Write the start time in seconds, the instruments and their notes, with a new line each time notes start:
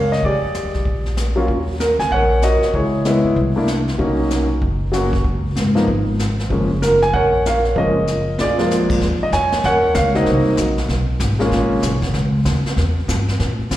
Already playing: upright bass C#2, grand piano A#4 C#5 F5
0.12 grand piano D#5, snare
0.23 upright bass F2, grand piano G4 G#4 D5, brush sweep, kick
0.54 snare, hi-hat pedal
0.63 upright bass D#2
0.74 upright bass B1, snare
0.85 upright bass A#1, brush sweep, kick
1.06 snare
1.17 snare, hi-hat pedal
1.36 grand piano F#3 A#3 C#4 F4
1.48 upright bass D#2, brush sweep, kick
1.80 grand piano A#4, snare, hi-hat pedal
1.99 upright bass C#2, grand piano G#5, snare
2.11 upright bass A#1, grand piano A#4 C#5 F#5, brush sweep, kick
2.42 grand piano F#4 A#4 D#5, snare, hi-hat pedal
2.62 muted upright bass stroke, snare
2.74 upright bass C#2, grand piano E4 G#4 C#5, brush sweep, kick
3.05 grand piano G#3 B3 E4 D#5, snare, hi-hat pedal
3.24 upright bass G2
3.36 upright bass C2, brush sweep, kick
3.56 grand piano A3 A#3 D4 E4
3.68 snare, hi-hat pedal
3.88 snare
3.98 upright bass B1, grand piano F#3 A#3 C#4 D#4, brush sweep, kick
4.30 snare, hi-hat pedal
4.62 upright bass F#1, brush sweep, kick
4.92 grand piano F#3 A#3 C#4 F#4, snare, hi-hat pedal
5.13 kick, snare
5.24 upright bass C#2, brush sweep, kick
5.56 upright bass G#2, snare, hi-hat pedal
5.75 grand piano F3 A#3 B3 D#4, snare
5.88 upright bass G#1, brush sweep, kick
6.19 snare, hi-hat pedal
6.39 snare
6.50 upright bass F#1, grand piano F3 G#3 A#3 C#4, brush sweep, kick
6.82 grand piano A#4, snare, hi-hat pedal
7.02 grand piano G#5, snare
7.13 upright bass A#1, grand piano A#4 C#5 F#5, brush sweep, kick
7.46 grand piano A#4 C#5 F5, snare, hi-hat pedal
7.65 snare
7.76 upright bass F#1, grand piano F3 G#3 A#3 C#4 A#4 D#5, brush sweep, kick
8.07 snare, hi-hat pedal
8.38 upright bass A#1, grand piano F4 G#4 D5, snare
8.58 grand piano F3 G#3 A#3 F4, snare
8.71 snare, hi-hat pedal
8.90 upright bass E2, kick, crash
9.01 upright bass D#2, brush sweep, kick, snare
9.23 grand piano D#5
9.32 upright bass F2, grand piano C#5 G#5, kick, snare, hi-hat pedal
9.52 snare
9.64 upright bass D#2, grand piano A#4 C#5 F#5, brush sweep, kick, snare
9.95 upright bass C#2, grand piano F5, kick, snare, hi-hat pedal
10.15 grand piano F#3 A#3 C4 D#4 F#4 A#4 D#5, snare
10.26 upright bass C2, brush sweep, kick, snare
10.57 upright bass A#1, kick, snare, hi-hat pedal
10.78 snare
10.88 upright bass B1, brush sweep, kick, snare
11.20 upright bass G#1, kick, snare, hi-hat pedal
11.39 grand piano G#3 A#3 C#4 F4, snare
11.51 upright bass A#1, brush sweep, kick, snare
11.82 upright bass B1, kick, snare, hi-hat pedal
12.02 kick, snare
12.14 upright bass C#2, brush sweep, kick, snare
12.45 upright bass D#2, kick, snare, hi-hat pedal
12.64 muted upright bass stroke, snare
12.77 upright bass E2, brush sweep, kick, snare
13.08 upright bass G2, kick, snare, hi-hat pedal
13.28 snare
13.39 upright bass A2, brush sweep, kick, snare
13.71 upright bass B2, kick, snare, hi-hat pedal